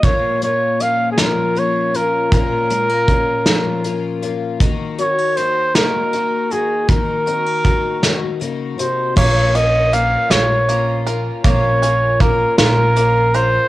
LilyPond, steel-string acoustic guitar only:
\new Staff \with { instrumentName = "Steel-string acoustic guitar" } { \time 6/8 \key bes \minor \tempo 4. = 53 << { r8 bes8 des'4 des'8 f'8~ | f'8 aes16 bes16 des'4 des'8 f'8 | r8 c'16 ees'16 ges'4 ges'8 ges'8 | r8 c'16 ees'16 ges'2 |
r2. | r2. | } \\ { bes,4. f4. | bes,4. f4. | ees4. bes4. | ees4. ees8 des8 c8 |
r2. | r2. | } >> }